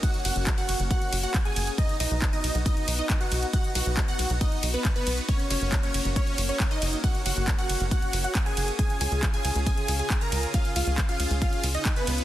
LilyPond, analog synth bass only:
\new Staff \with { instrumentName = "Analog synth bass" } { \clef bass \time 4/4 \key fis \major \tempo 4 = 137 r8 fis,,16 fis,,16 r8 fis,,16 fis,,16 r8 fis,,16 r8. fis,,16 r16 | r8 b,,16 b,,16 r8 b,,16 b,,16 r8 b,,16 r8. b,,16 r16 | r8 b,,16 b,,16 r8 b,,16 b,,16 r8 b,,16 r8. b,,16 r16 | r8 fis,,16 fis,,16 r8 fis,,16 fis,,16 r8 fis,,16 r8. fis,,16 r16 |
r8 fis,,16 fis,,16 r8 fis,,16 fis,,16 r8 fis,,16 r8. fis,,16 r16 | r8 cis,16 cis,16 r8 cis,16 cis,16 r8 cis,16 r8. cis,16 r16 | r8 cis,16 cis,16 r8 cis,16 cis,16 r8 cis,16 r8. cis,16 r16 | }